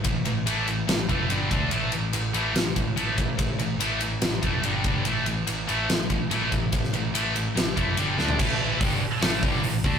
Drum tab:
CC |----------------|----------------|----------------|----------------|
RD |x-x-x-x-x-x-x-x-|x-x-x-x-x-x-x-x-|x-x-x-x-x-x-x-x-|x-x-x-x-x-x-x-x-|
HH |----------------|----------------|----------------|----------------|
SD |--------o-------|--------o-------|--------o-------|--------o-------|
FT |----------------|----------------|----------------|----------------|
BD |o---------o---o-|----------o---o-|o---------o---o-|----------o---o-|

CC |----------------|x---------------|
RD |x-x-x-x-x-x-x---|----------------|
HH |----------------|----o---o---o---|
SD |-o------o-----o-|--------o-------|
FT |---------------o|----------------|
BD |o---------o-----|o---o-----o---o-|